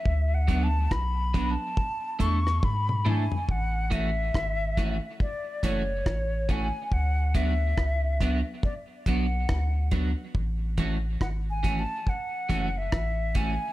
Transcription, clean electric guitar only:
X:1
M:4/4
L:1/8
Q:"Swing 16ths" 1/4=70
K:A
V:1 name="Clean electric guitar"
z [F,B,DF] z [F,B,DF] z [A,DEA] z [A,DEA] | z [E,A,CF] z [E,A,CF] z [E,A,CF] z [E,A,CF] | z [F,B,DF] z [F,B,DF] z [F,B,DF] z [F,B,DF] | z [E,A,CF] z [E,A,CF] z [E,A,CF] z [E,A,CF] |]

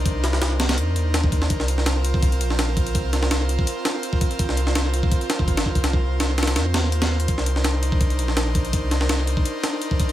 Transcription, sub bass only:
X:1
M:4/4
L:1/16
Q:"Swing 16ths" 1/4=166
K:Bbmix
V:1 name="Sub bass" clef=bass
C,,8 F,,2 E,,6 | C,,8- C,,2 B,,,6 | C,,8 z8 | C,,8 z3 G,,,3 C,,2 |
C,,8 F,,2 E,,6 | C,,8- C,,2 B,,,6 | C,,8 z8 |]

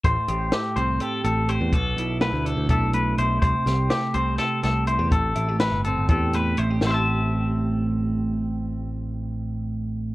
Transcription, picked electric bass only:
X:1
M:7/8
L:1/16
Q:1/4=124
K:Am
V:1 name="Picked electric bass" clef=bass
A,,, z A,,,2 z2 C,,2 z2 A,,,3 E,, | B,,,2 B,,,3 D,,2 D,, B,,,4 B,,,2 | C,, z C,,2 z2 C,,2 z2 C,,3 E,, | A,,,2 A,,,3 G,,,2 G,,, E,,4 A,,,2 |
A,,,12- A,,,2- | A,,,12- A,,,2 |]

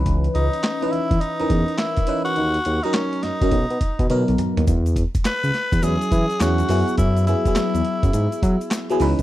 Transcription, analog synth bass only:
X:1
M:4/4
L:1/16
Q:"Swing 16ths" 1/4=104
K:F#mix
V:1 name="Analog synth bass" clef=bass
C,,2 C,, z3 E,, E,, z E,, E,, z4 z | D,,2 D,, z3 F,, F,, B,,, B,, z B,, B,, B,,, z D,, | E,,3 z2 C,, z E,, E,, z E, z E,,2 F,, z | F,,3 z2 E,, z F,, G,, z F, z3 C,, ^B,,, |]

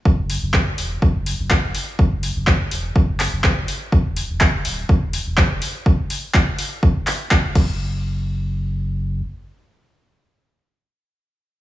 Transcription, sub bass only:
X:1
M:4/4
L:1/16
Q:1/4=124
K:Emix
V:1 name="Sub bass" clef=bass
F,,,3 F,,,3 E,,, z F,,,3 F,,, z F,,, z2 | F,,,3 F,,,3 E,,, z F,,,3 F,,, z F,,, z2 | E,,,3 E,,,3 D,,, z E,,,3 E,,, z E,,, z2 | z12 z2 F,,,2- |
F,,,12 z4 | z16 |]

